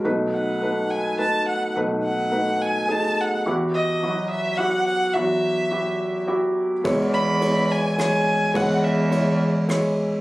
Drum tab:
RD |------|------|------|------|
SD |------|------|------|------|
BD |------|------|------|------|

RD |x-x-x-|x-x-x-|
SD |----r-|----r-|
BD |o-----|o-----|